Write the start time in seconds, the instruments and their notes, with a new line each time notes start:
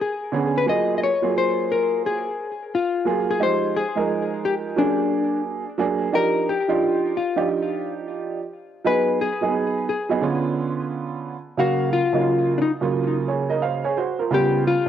0.01 hollow-body jazz guitar G#4
0.32 upright piano D3 B3 C#4 G#4
0.58 hollow-body jazz guitar B4
0.65 upright piano F#3 A#3 F4 G#4, hollow-body jazz guitar D#5
0.98 hollow-body jazz guitar D#5
1.03 hollow-body jazz guitar C#5
1.22 upright piano F#3 A#3 F4 G#4
1.38 hollow-body jazz guitar C5
1.72 hollow-body jazz guitar A#4
2.06 hollow-body jazz guitar G#4
2.75 hollow-body jazz guitar F4
3.05 upright piano F#3 A#3 F4 G#4
3.31 hollow-body jazz guitar G#4
3.39 upright piano F3 G#3 D#4 G4, hollow-body jazz guitar C5
3.77 hollow-body jazz guitar G#4
3.95 upright piano F3 G#3 D#4 A#4
4.45 hollow-body jazz guitar G4
4.76 upright piano F#3 A#3 C#4 G#4, hollow-body jazz guitar D4
4.84 upright piano D4
5.78 upright piano F#3 A#3 D4 G#4
6.12 upright piano F3 D4 D#4 G4, hollow-body jazz guitar A#4
6.49 hollow-body jazz guitar G4
6.68 upright piano F3 D4 D#4 F4
7.17 hollow-body jazz guitar F4
7.36 upright piano F3 D4 D#4 G4
8.84 upright piano F#3 B3 D#4 G#4, hollow-body jazz guitar B4
9.21 hollow-body jazz guitar G#4
9.41 upright piano F#3 A#3 D#4 G#4
9.48 upright piano B3
9.89 hollow-body jazz guitar G#4
10.09 upright piano F#3 B3 D#4 G#4
10.21 upright piano D3 B3 C#4 F4
11.57 upright piano C#3 F#3 A#3 F5, hollow-body jazz guitar F#4
11.93 hollow-body jazz guitar F4
12.13 upright piano C#3 F#3 A#3 D#4
12.21 upright piano F4
12.58 hollow-body jazz guitar D4 D#4
12.81 upright piano C#3 F#3 A#3 F4
13.28 upright piano G#4 C#5
13.50 upright piano A#4 D#5
13.62 upright piano C5 F5
13.85 upright piano G#4 C#5
13.97 upright piano F#4 C5
14.19 upright piano F4 A#4
14.31 upright piano C#3 G3 B3 F4, hollow-body jazz guitar G4
14.67 hollow-body jazz guitar F4
14.86 upright piano C#3